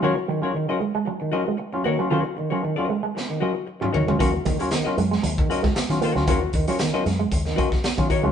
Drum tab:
HH |----------------|----------------|x-xxx-x-x-x-xxx-|x-xxx-x-x-x-xxx-|
SD |----------------|--------o-------|----o--o---ooo-o|----o-o--o-oo---|
T2 |----------------|-------------o--|----------------|----------------|
FT |----------------|--------------oo|----------------|----------------|
BD |----------------|----------------|o-o------o-o----|o-o-----o-oo-oo-|